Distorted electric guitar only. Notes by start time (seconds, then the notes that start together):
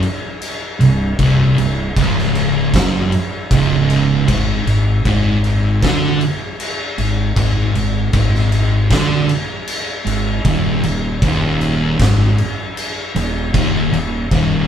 0.80 C2
1.19 C2
1.59 C2
1.98 C#2
2.75 F#2
3.52 C#2
4.29 G#2
4.68 G#2
5.07 G#2
5.83 D3
6.99 G#2
7.37 G#2
7.76 G#2
8.13 G#2
8.91 D3
10.06 G#2
10.45 D#2
10.84 D#2
11.23 D#2
11.99 G#2
13.16 D#2
13.54 D#2
13.93 D#2
14.32 D#2